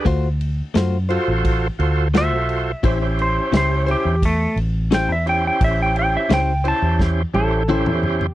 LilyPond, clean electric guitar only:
\new Staff \with { instrumentName = "Clean electric guitar" } { \time 4/4 \key d \major \tempo 4 = 86 <a eis' fis' c''>8 r8 <a eis' fis' c''>8 <eis' fis' c''>8 r4 <a eis' fis' c''>8 r8 | <cis' e' g' bis'>8 r8 <cis' e' g' bis'>8 <e' g' bis'>8 r4 <cis' e' g' bis'>8 r8 | r4 <cis' e' g' bis'>8 <e' g' bis'>8 r4 <cis' e' g' bis'>8 r8 | }